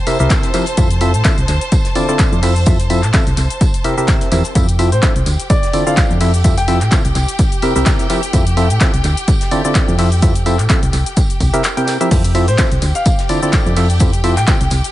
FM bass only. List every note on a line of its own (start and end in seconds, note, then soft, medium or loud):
0.20 0.28 C2 medium
0.78 1.16 F2 loud
1.14 1.23 A2 medium
1.38 1.46 C2 medium
1.48 1.59 D2 medium
2.32 3.05 F2 loud
3.03 3.12 A2 loud
3.27 3.35 C2 medium
3.37 3.48 C2 medium
4.32 4.42 E2 medium
4.55 4.94 F2 loud
4.92 5.01 A2 loud
5.16 5.24 C2 medium
5.26 5.37 D2 medium
6.10 6.83 F2 loud
6.81 6.90 A2 loud
7.05 7.13 C2 medium
7.15 7.26 C2 loud
7.76 7.84 C2 medium
8.33 8.72 F2 loud
8.70 8.79 A2 loud
8.94 9.02 C2 medium
9.04 9.15 D2 loud
9.88 10.61 F2 loud
10.59 10.67 A2 loud
10.83 10.91 C2 medium
10.93 11.04 C2 medium
11.40 11.51 C2 medium
12.11 12.50 F2 loud
12.48 12.56 A2 loud
12.72 12.80 C2 medium
12.82 12.93 D2 loud
13.66 14.39 F2 loud
14.37 14.45 A2 loud
14.61 14.69 C2 medium
14.71 14.82 C2 medium